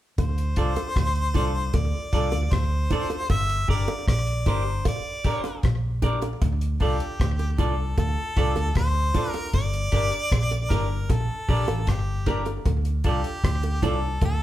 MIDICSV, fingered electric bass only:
0, 0, Header, 1, 2, 480
1, 0, Start_track
1, 0, Key_signature, -1, "minor"
1, 0, Tempo, 779524
1, 112, Time_signature, 4, 2, 24, 8
1, 8885, End_track
2, 0, Start_track
2, 0, Title_t, "Fingered electric bass"
2, 0, Program_c, 0, 33
2, 114, Note_on_c, 0, 38, 86
2, 327, Note_off_c, 0, 38, 0
2, 354, Note_on_c, 0, 36, 78
2, 460, Note_off_c, 0, 36, 0
2, 594, Note_on_c, 0, 38, 80
2, 807, Note_off_c, 0, 38, 0
2, 833, Note_on_c, 0, 36, 83
2, 1046, Note_off_c, 0, 36, 0
2, 1072, Note_on_c, 0, 38, 110
2, 1179, Note_off_c, 0, 38, 0
2, 1313, Note_on_c, 0, 36, 96
2, 1420, Note_off_c, 0, 36, 0
2, 1436, Note_on_c, 0, 38, 81
2, 1541, Note_off_c, 0, 38, 0
2, 1551, Note_on_c, 0, 38, 88
2, 1766, Note_off_c, 0, 38, 0
2, 2033, Note_on_c, 0, 31, 101
2, 2246, Note_off_c, 0, 31, 0
2, 2272, Note_on_c, 0, 31, 77
2, 2379, Note_off_c, 0, 31, 0
2, 2512, Note_on_c, 0, 34, 91
2, 2726, Note_off_c, 0, 34, 0
2, 2749, Note_on_c, 0, 31, 82
2, 2964, Note_off_c, 0, 31, 0
2, 3472, Note_on_c, 0, 34, 86
2, 3900, Note_off_c, 0, 34, 0
2, 3954, Note_on_c, 0, 38, 92
2, 4167, Note_off_c, 0, 38, 0
2, 4193, Note_on_c, 0, 36, 78
2, 4300, Note_off_c, 0, 36, 0
2, 4435, Note_on_c, 0, 38, 81
2, 4648, Note_off_c, 0, 38, 0
2, 4673, Note_on_c, 0, 36, 72
2, 4887, Note_off_c, 0, 36, 0
2, 4914, Note_on_c, 0, 38, 92
2, 5020, Note_off_c, 0, 38, 0
2, 5155, Note_on_c, 0, 36, 90
2, 5261, Note_off_c, 0, 36, 0
2, 5272, Note_on_c, 0, 38, 79
2, 5379, Note_off_c, 0, 38, 0
2, 5392, Note_on_c, 0, 38, 90
2, 5607, Note_off_c, 0, 38, 0
2, 5874, Note_on_c, 0, 31, 104
2, 6088, Note_off_c, 0, 31, 0
2, 6114, Note_on_c, 0, 31, 78
2, 6221, Note_off_c, 0, 31, 0
2, 6355, Note_on_c, 0, 34, 80
2, 6568, Note_off_c, 0, 34, 0
2, 6593, Note_on_c, 0, 31, 85
2, 6807, Note_off_c, 0, 31, 0
2, 6834, Note_on_c, 0, 34, 94
2, 6941, Note_off_c, 0, 34, 0
2, 7075, Note_on_c, 0, 34, 94
2, 7182, Note_off_c, 0, 34, 0
2, 7198, Note_on_c, 0, 33, 87
2, 7303, Note_off_c, 0, 33, 0
2, 7314, Note_on_c, 0, 31, 93
2, 7742, Note_off_c, 0, 31, 0
2, 7795, Note_on_c, 0, 38, 102
2, 8009, Note_off_c, 0, 38, 0
2, 8036, Note_on_c, 0, 36, 79
2, 8142, Note_off_c, 0, 36, 0
2, 8275, Note_on_c, 0, 38, 91
2, 8489, Note_off_c, 0, 38, 0
2, 8513, Note_on_c, 0, 36, 74
2, 8728, Note_off_c, 0, 36, 0
2, 8755, Note_on_c, 0, 38, 94
2, 8862, Note_off_c, 0, 38, 0
2, 8885, End_track
0, 0, End_of_file